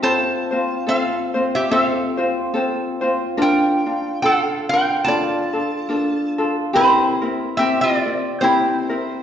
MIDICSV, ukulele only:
0, 0, Header, 1, 2, 480
1, 0, Start_track
1, 0, Key_signature, -1, "major"
1, 0, Tempo, 839161
1, 15, Time_signature, 4, 2, 24, 8
1, 5278, End_track
2, 0, Start_track
2, 0, Title_t, "Ukulele"
2, 0, Program_c, 0, 24
2, 14, Note_on_c, 0, 69, 72
2, 15, Note_on_c, 0, 60, 78
2, 19, Note_on_c, 0, 65, 81
2, 20, Note_on_c, 0, 72, 75
2, 284, Note_off_c, 0, 72, 0
2, 290, Note_off_c, 0, 69, 0
2, 291, Note_off_c, 0, 60, 0
2, 291, Note_on_c, 0, 72, 43
2, 292, Note_off_c, 0, 65, 0
2, 300, Note_on_c, 0, 65, 43
2, 302, Note_on_c, 0, 60, 39
2, 495, Note_off_c, 0, 60, 0
2, 495, Note_on_c, 0, 69, 50
2, 496, Note_off_c, 0, 72, 0
2, 500, Note_off_c, 0, 65, 0
2, 501, Note_on_c, 0, 60, 53
2, 507, Note_on_c, 0, 65, 55
2, 508, Note_on_c, 0, 72, 61
2, 760, Note_off_c, 0, 72, 0
2, 767, Note_on_c, 0, 72, 48
2, 768, Note_off_c, 0, 65, 0
2, 770, Note_off_c, 0, 60, 0
2, 771, Note_off_c, 0, 69, 0
2, 775, Note_on_c, 0, 65, 44
2, 777, Note_on_c, 0, 60, 46
2, 974, Note_off_c, 0, 60, 0
2, 974, Note_off_c, 0, 72, 0
2, 975, Note_off_c, 0, 65, 0
2, 976, Note_on_c, 0, 69, 59
2, 981, Note_on_c, 0, 60, 70
2, 982, Note_on_c, 0, 65, 74
2, 982, Note_on_c, 0, 72, 80
2, 1236, Note_off_c, 0, 72, 0
2, 1243, Note_off_c, 0, 65, 0
2, 1243, Note_on_c, 0, 72, 54
2, 1247, Note_off_c, 0, 60, 0
2, 1250, Note_on_c, 0, 65, 52
2, 1251, Note_off_c, 0, 69, 0
2, 1254, Note_on_c, 0, 60, 44
2, 1446, Note_off_c, 0, 60, 0
2, 1451, Note_on_c, 0, 69, 58
2, 1452, Note_off_c, 0, 65, 0
2, 1452, Note_off_c, 0, 72, 0
2, 1453, Note_on_c, 0, 60, 55
2, 1458, Note_on_c, 0, 65, 58
2, 1462, Note_on_c, 0, 72, 60
2, 1715, Note_off_c, 0, 72, 0
2, 1720, Note_off_c, 0, 65, 0
2, 1721, Note_on_c, 0, 72, 57
2, 1727, Note_on_c, 0, 65, 54
2, 1728, Note_off_c, 0, 60, 0
2, 1729, Note_off_c, 0, 69, 0
2, 1735, Note_on_c, 0, 60, 47
2, 1927, Note_off_c, 0, 72, 0
2, 1928, Note_off_c, 0, 65, 0
2, 1929, Note_off_c, 0, 60, 0
2, 1930, Note_on_c, 0, 70, 79
2, 1932, Note_on_c, 0, 62, 87
2, 1935, Note_on_c, 0, 65, 74
2, 2202, Note_off_c, 0, 65, 0
2, 2205, Note_off_c, 0, 62, 0
2, 2208, Note_off_c, 0, 70, 0
2, 2209, Note_on_c, 0, 65, 45
2, 2211, Note_on_c, 0, 62, 41
2, 2408, Note_off_c, 0, 62, 0
2, 2411, Note_off_c, 0, 65, 0
2, 2415, Note_on_c, 0, 62, 54
2, 2418, Note_on_c, 0, 65, 57
2, 2422, Note_on_c, 0, 69, 57
2, 2685, Note_off_c, 0, 65, 0
2, 2688, Note_off_c, 0, 62, 0
2, 2691, Note_on_c, 0, 65, 44
2, 2694, Note_off_c, 0, 69, 0
2, 2695, Note_on_c, 0, 62, 39
2, 2892, Note_off_c, 0, 62, 0
2, 2892, Note_off_c, 0, 65, 0
2, 2894, Note_on_c, 0, 70, 56
2, 2898, Note_on_c, 0, 62, 61
2, 2899, Note_on_c, 0, 65, 74
2, 2901, Note_on_c, 0, 69, 65
2, 3158, Note_off_c, 0, 69, 0
2, 3165, Note_on_c, 0, 69, 48
2, 3166, Note_off_c, 0, 65, 0
2, 3170, Note_off_c, 0, 70, 0
2, 3172, Note_off_c, 0, 62, 0
2, 3173, Note_on_c, 0, 65, 46
2, 3179, Note_on_c, 0, 62, 42
2, 3365, Note_off_c, 0, 62, 0
2, 3367, Note_on_c, 0, 70, 52
2, 3370, Note_off_c, 0, 65, 0
2, 3371, Note_off_c, 0, 69, 0
2, 3372, Note_on_c, 0, 62, 61
2, 3377, Note_on_c, 0, 65, 58
2, 3378, Note_on_c, 0, 69, 62
2, 3644, Note_off_c, 0, 69, 0
2, 3646, Note_off_c, 0, 70, 0
2, 3649, Note_off_c, 0, 62, 0
2, 3650, Note_off_c, 0, 65, 0
2, 3651, Note_on_c, 0, 69, 67
2, 3657, Note_on_c, 0, 65, 48
2, 3662, Note_on_c, 0, 62, 51
2, 3851, Note_on_c, 0, 67, 70
2, 3852, Note_off_c, 0, 62, 0
2, 3855, Note_off_c, 0, 69, 0
2, 3855, Note_on_c, 0, 60, 87
2, 3856, Note_off_c, 0, 65, 0
2, 3858, Note_on_c, 0, 64, 79
2, 3862, Note_on_c, 0, 70, 85
2, 4120, Note_off_c, 0, 70, 0
2, 4127, Note_on_c, 0, 70, 46
2, 4128, Note_off_c, 0, 64, 0
2, 4128, Note_off_c, 0, 67, 0
2, 4130, Note_off_c, 0, 60, 0
2, 4135, Note_on_c, 0, 64, 49
2, 4139, Note_on_c, 0, 60, 36
2, 4333, Note_off_c, 0, 60, 0
2, 4333, Note_off_c, 0, 70, 0
2, 4334, Note_off_c, 0, 64, 0
2, 4335, Note_on_c, 0, 67, 50
2, 4340, Note_on_c, 0, 60, 64
2, 4340, Note_on_c, 0, 64, 61
2, 4344, Note_on_c, 0, 70, 63
2, 4602, Note_off_c, 0, 70, 0
2, 4606, Note_off_c, 0, 67, 0
2, 4608, Note_on_c, 0, 70, 44
2, 4613, Note_off_c, 0, 60, 0
2, 4613, Note_off_c, 0, 64, 0
2, 4619, Note_on_c, 0, 60, 38
2, 4809, Note_off_c, 0, 60, 0
2, 4811, Note_off_c, 0, 70, 0
2, 4814, Note_on_c, 0, 67, 59
2, 4816, Note_on_c, 0, 60, 70
2, 4819, Note_on_c, 0, 64, 65
2, 4821, Note_on_c, 0, 70, 73
2, 5081, Note_off_c, 0, 70, 0
2, 5085, Note_off_c, 0, 64, 0
2, 5087, Note_on_c, 0, 70, 50
2, 5089, Note_off_c, 0, 67, 0
2, 5091, Note_off_c, 0, 60, 0
2, 5092, Note_on_c, 0, 64, 51
2, 5098, Note_on_c, 0, 60, 43
2, 5278, Note_off_c, 0, 60, 0
2, 5278, Note_off_c, 0, 64, 0
2, 5278, Note_off_c, 0, 70, 0
2, 5278, End_track
0, 0, End_of_file